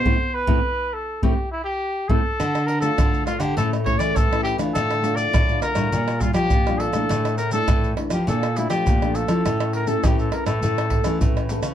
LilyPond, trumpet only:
\new Staff \with { instrumentName = "Trumpet" } { \time 4/4 \key a \minor \tempo 4 = 102 c''8 b'4 a'8 g'8 e'16 g'8. a'8~ | \key d \minor a'8 bes'16 a'8. f'16 g'16 a'8 cis''16 d''16 a'8 g'8 | a'8. d''8. bes'4 f'16 g'8. a'8~ | a'8 bes'16 a'8. r16 g'16 a'8 e'16 g'8. a'8~ |
a'8 bes'16 a'16 g'16 a'16 bes'16 a'4.~ a'16 r8 | }